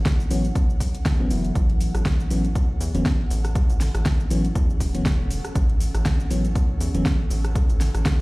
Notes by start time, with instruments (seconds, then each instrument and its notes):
Already playing: ambient pad C#4 A4 F#5
0.05 kick, snare, closed hi-hat, cabasa
0.20 cabasa
0.30 analog synth bass A1, fm electric piano E3 F#3 B3 C#4, open hi-hat, cabasa
0.45 closed hi-hat, cabasa
0.55 kick, closed hi-hat, cabasa
0.70 cabasa
0.80 kick, open hi-hat, cabasa
0.95 closed hi-hat, cabasa
1.05 kick, snare, closed hi-hat, cabasa
1.19 analog synth bass A1, fm electric piano E3 F#3 B3 C#4
1.30 analog synth bass F#1, fm electric piano E3 F#3 B3 E4, open hi-hat, cabasa
1.45 closed hi-hat, cabasa
1.55 analog synth bass A1, kick, closed hi-hat, cabasa
1.70 closed hi-hat
1.81 open hi-hat, cabasa
1.95 analog synth bass A1, cross-stick, closed hi-hat, cabasa
2.05 kick, snare, closed hi-hat, cabasa
2.20 cabasa
2.30 analog synth bass A1, fm electric piano E3 F#3 B3 C#4, open hi-hat, cabasa
2.45 closed hi-hat, cabasa
2.55 kick, closed hi-hat, cabasa
2.80 analog synth bass E2, open hi-hat, cabasa
2.94 analog synth bass F#1, fm electric piano E3 F#3 B3 C#4, closed hi-hat, cabasa
3.05 kick, snare, closed hi-hat, cabasa
3.30 analog synth bass A1, open hi-hat, cabasa
3.45 cross-stick, closed hi-hat, cabasa
3.55 kick, closed hi-hat, cabasa
3.70 analog synth bass A1, closed hi-hat, cabasa
3.80 snare, open hi-hat, cabasa
3.95 analog synth bass A1, cross-stick, closed hi-hat, cabasa
4.05 kick, snare, closed hi-hat, cabasa
4.20 cabasa
4.30 analog synth bass A1, fm electric piano E3 F#3 B3 C#4, open hi-hat, cabasa
4.45 closed hi-hat, cabasa
4.55 analog synth bass E2, kick, closed hi-hat, cabasa
4.70 cabasa
4.80 analog synth bass E1, kick, open hi-hat, cabasa
4.94 fm electric piano E3 F#3 B3 C#4, closed hi-hat, cabasa
5.05 kick, snare, closed hi-hat, cabasa
5.30 open hi-hat, cabasa
5.45 cross-stick, closed hi-hat, cabasa
5.55 analog synth bass A1, kick, closed hi-hat, cabasa
5.70 closed hi-hat
5.80 open hi-hat, cabasa
5.95 analog synth bass A1, cross-stick, closed hi-hat, cabasa
6.05 kick, snare, closed hi-hat, cabasa
6.20 cabasa
6.30 analog synth bass A1, fm electric piano E3 F#3 B3 C#4, open hi-hat, cabasa
6.45 closed hi-hat, cabasa
6.55 kick, closed hi-hat, cabasa
6.81 analog synth bass E2, open hi-hat, cabasa
6.94 analog synth bass F#1, fm electric piano E3 F#3 B3 C#4, closed hi-hat, cabasa
7.05 kick, snare, closed hi-hat, cabasa
7.30 analog synth bass A1, open hi-hat, cabasa
7.45 cross-stick, closed hi-hat, cabasa
7.55 kick, closed hi-hat, cabasa
7.70 analog synth bass A1, closed hi-hat, cabasa
7.80 snare, open hi-hat, cabasa
7.95 analog synth bass A1, cross-stick, closed hi-hat, cabasa
8.05 kick, snare, closed hi-hat, cabasa